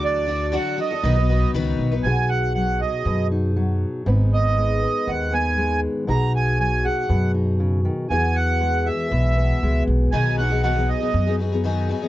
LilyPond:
<<
  \new Staff \with { instrumentName = "Accordion" } { \time 4/4 \key b \major \tempo 4 = 119 d''4 fis''8 dis''4. r4 | gis''8 fis''8 fis''8 dis''4 r4. | r8 dis''4. fis''8 gis''4 r8 | ais''8 gis''8 gis''8 fis''4 r4. |
gis''8 fis''4 e''2 r8 | gis''8 fis''8 fis''8 dis''4 r4. | }
  \new Staff \with { instrumentName = "Steel-string acoustic guitar" } { \time 4/4 \key b \major << { r1 | <dis' fis' gis'>4. gis'4 dis'4. | <b dis' b'>4. b'4 b4. | <dis' fis' gis'>4. gis'4 dis'4. |
<b fis' gis'>4. gis'4 b4.~ | b1 | } \\ { r1 | b,4 fis4 b,4 fis4 | gis,4 gis4 dis4 gis4 | b,4 fis4 b,4 cis8 dis8 |
e4 gis4 b,4 gis4 | r1 | } >> }
  \new Staff \with { instrumentName = "Twelve-string acoustic guitar" } { \time 4/4 \key b \major <d fis d' fis' a'>8 <fis d' fis' a'>8 <d fis d' fis' a'>8 <fis d' fis' a'>16 <d' fis' a'>16 <b, dis fis b dis' b'>16 <fis b dis' b'>16 <fis b dis' b'>8 <b, dis fis b dis' b'>8. <fis b dis' b'>16 | r1 | r1 | r1 |
r1 | <b, dis fis b dis' gis'>8 <fis b dis' gis'>16 <fis b dis' gis'>16 <b, dis fis b dis' gis'>16 <fis b dis' gis'>8 <fis b dis' gis'>8 <fis b dis' gis'>16 <fis b dis' gis'>16 <fis b dis' gis'>16 <b, dis fis b dis' gis'>8 <fis b dis' gis'>16 <fis b dis' gis'>16 | }
  \new Staff \with { instrumentName = "Upright bass" } { \clef bass \time 4/4 \key b \major d,4. r8 b,,4 cis,8 b,,8 | b,,2 fis,2 | gis,,2 dis,2 | b,,2 fis,2 |
e,2 b,,4 cis,8 b,,8 | b,,2 fis,2 | }
>>